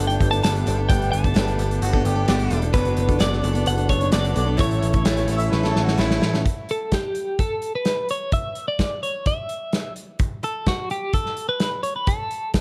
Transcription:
Already playing: picked electric bass G1, tonewheel organ A3 B3 G4
0.07 steel-string acoustic guitar B3 D4 A4, clean electric guitar G5, closed hi-hat
0.20 picked electric bass G1, kick, closed hi-hat
0.31 steel-string acoustic guitar B3 D4 A4, clean electric guitar A5, closed hi-hat
0.43 picked electric bass G1, steel-string acoustic guitar G3 B3 D4 A4, clean electric guitar A5, snare, closed hi-hat
0.55 closed hi-hat
0.66 picked electric bass G1, steel-string acoustic guitar G3 B3 D4 A4, closed hi-hat
0.77 steel-string acoustic guitar B3 D4 A4
0.89 picked electric bass G1, steel-string acoustic guitar G3 B3 D4 A4, clean electric guitar G5, kick, closed hi-hat
1.02 closed hi-hat
1.12 picked electric bass G1, clean electric guitar A5, closed hi-hat
1.23 steel-string acoustic guitar B3 D4 A4, kick, closed hi-hat
1.34 picked electric bass G1, steel-string acoustic guitar G3 B3 D4 A4, snare, closed hi-hat
1.48 snare, closed hi-hat
1.58 picked electric bass G1, steel-string acoustic guitar G3 B3 D4 A4, closed hi-hat
1.71 closed hi-hat
1.82 picked electric bass G1, harmonica F#4, closed hi-hat
1.93 steel-string acoustic guitar B3 D4 A4, kick
2.05 picked electric bass G1, harmonica G4, closed hi-hat
2.15 steel-string acoustic guitar B3 D4 A4
2.28 picked electric bass G1, steel-string acoustic guitar G3 B3 D4 A4, harmonica G4, snare, closed hi-hat
2.39 closed hi-hat
2.50 picked electric bass E1, steel-string acoustic guitar G3 B3 D4 A4, closed hi-hat
2.62 steel-string acoustic guitar B3 D4 A4, closed hi-hat
2.73 picked electric bass F#1, steel-string acoustic guitar F#3 B3 D4 A4, tonewheel organ B3 D4 F#4, clean electric guitar B4, kick, closed hi-hat
2.85 closed hi-hat
2.97 picked electric bass F#1, closed hi-hat
3.08 steel-string acoustic guitar B3 D4 A4, kick, closed hi-hat
3.19 picked electric bass F#1, steel-string acoustic guitar F#3 B3 D4 A4, clean electric guitar D5, snare, closed hi-hat
3.33 snare
3.41 picked electric bass F#1, steel-string acoustic guitar F#3 B3 D4 A4, closed hi-hat
3.53 steel-string acoustic guitar B3 D4 A4, closed hi-hat
3.66 picked electric bass F#1, clean electric guitar F#5, closed hi-hat
3.75 steel-string acoustic guitar B3 D4 A4, closed hi-hat
3.89 picked electric bass F#1, clean electric guitar C#5, kick, closed hi-hat
4.00 steel-string acoustic guitar B3 D4 A4, closed hi-hat
4.11 picked electric bass F#1, steel-string acoustic guitar F#3 B3 D4 A4, clean electric guitar D5, snare, closed hi-hat
4.24 closed hi-hat
4.34 picked electric bass B1, steel-string acoustic guitar F#3 B3 D4 A4, closed hi-hat
4.46 steel-string acoustic guitar B3 D4 A4
4.56 picked electric bass A1, steel-string acoustic guitar A2 A3 C#4 E4 A4, tonewheel organ A3 E4 C#5, kick, closed hi-hat
4.61 clean electric guitar C#5
4.71 closed hi-hat
4.82 picked electric bass A1, closed hi-hat
4.93 steel-string acoustic guitar C#4 E4 A4, kick, closed hi-hat
5.05 picked electric bass A1, steel-string acoustic guitar A2 A3 C#4 E4 A4, snare, closed hi-hat
5.17 snare, closed hi-hat
5.28 picked electric bass A1, steel-string acoustic guitar A3 C#4 E4 A4, closed hi-hat
5.37 harmonica E5, closed hi-hat
5.52 picked electric bass A1, harmonica B4, snare
5.63 steel-string acoustic guitar C#4 E4 A4, snare
5.68 harmonica A4
5.75 picked electric bass A1, snare
5.83 harmonica F#4
5.88 snare
5.98 picked electric bass A1, steel-string acoustic guitar A2 A3 C#4 E4 A4, harmonica E4, snare
6.11 snare
6.21 picked electric bass A1, steel-string acoustic guitar A3 C#4 E4 A4, snare
6.32 steel-string acoustic guitar C#4 E4 A4, snare
6.46 kick, closed hi-hat
6.69 clean electric guitar A4, closed hi-hat
6.92 clean electric guitar G4, kick, snare, closed hi-hat
7.15 closed hi-hat
7.39 clean electric guitar A4, kick, closed hi-hat
7.62 closed hi-hat
7.75 clean electric guitar B4
7.85 snare, closed hi-hat
8.09 clean electric guitar C#5, closed hi-hat
8.32 clean electric guitar E5, kick, closed hi-hat
8.55 closed hi-hat
8.68 clean electric guitar D5
8.79 kick, snare, closed hi-hat
9.03 clean electric guitar C#5, closed hi-hat
9.26 clean electric guitar E5, kick, closed hi-hat
9.49 closed hi-hat
9.73 snare, closed hi-hat
9.96 closed hi-hat
10.19 kick, closed hi-hat
10.43 clean electric guitar A4, closed hi-hat
10.66 clean electric guitar F#4, kick, snare, closed hi-hat
10.90 clean electric guitar G4, closed hi-hat
11.13 clean electric guitar A4, kick, closed hi-hat
11.26 snare
11.37 closed hi-hat
11.49 clean electric guitar B4
11.60 snare, closed hi-hat
11.83 clean electric guitar C#5, closed hi-hat
11.96 clean electric guitar B4
12.07 clean electric guitar A4, kick, closed hi-hat
12.31 closed hi-hat
12.54 kick, snare, closed hi-hat

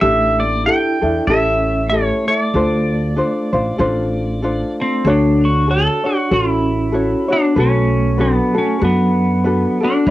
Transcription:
0.01 upright bass A1, vibraphone A3, ukulele D4 E4 G4 A4, pedal steel guitar E5
0.38 vibraphone A#3, pedal steel guitar D5
0.63 ukulele D4 G4, vibraphone E4, pedal steel guitar G5
0.67 ukulele E4 A4
1.01 upright bass E2, ukulele D4 E4 A4
1.26 upright bass A1, vibraphone C#4, ukulele C#4 G4, pedal steel guitar E5
1.30 ukulele E4 A4
1.87 vibraphone A3, pedal steel guitar C#5
1.91 ukulele C#4 E4 G4 A4
2.25 vibraphone A3, ukulele A4, pedal steel guitar D5
2.30 ukulele E4
2.54 upright bass D2, ukulele D4 F4 A4 C5
3.16 ukulele D4 F4 A4 C5
3.53 upright bass A1, ukulele D4 F4 C5
3.78 upright bass A1, ukulele D4 F4 A4 C5
4.42 ukulele D4 F4 A4 C5
4.80 vibraphone A3, pedal steel guitar C4
5.05 upright bass D2, vibraphone A3, ukulele D4 F#4 A4 C#5
5.10 pedal steel guitar D4
5.41 vibraphone D4, pedal steel guitar F#4
5.67 ukulele D4 F#4 A4 C#5, vibraphone F#4
5.71 pedal steel guitar A4
6.04 vibraphone D4, ukulele D4 F#4 C#5, pedal steel guitar F#4
6.31 upright bass A1, vibraphone C#4, pedal steel guitar F4, ukulele F#4 A4 C#5
6.50 pedal steel guitar E4
6.92 ukulele F#4 A4 C#5
7.28 vibraphone B3, ukulele D4 F#4 C#5
7.33 pedal steel guitar D4
7.56 upright bass B1, vibraphone A3, ukulele F#4 A4 B4
7.60 pedal steel guitar C#4
8.17 vibraphone F#3, pedal steel guitar B3, ukulele D4 F#4 A4 B4
8.54 vibraphone A3, ukulele F#4 A4
8.58 pedal steel guitar C#4
8.80 upright bass F#2, vibraphone F#3, ukulele D4 F#4 A4 B4
8.85 pedal steel guitar B3
9.44 ukulele D4 F#4 A4 B4
9.80 vibraphone B3, ukulele D4 F#4 A4, pedal steel guitar D4
10.06 upright bass G1, vibraphone D4, ukulele D4 B4

